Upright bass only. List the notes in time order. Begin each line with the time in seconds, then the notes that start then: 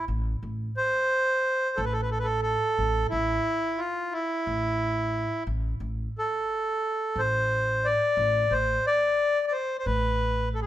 0.08 A1
0.43 A1
1.78 A1
2.78 A1
3.12 A1
4.47 A1
5.47 A1
5.80 A1
7.16 A1
8.17 A1
8.51 A1
9.86 A1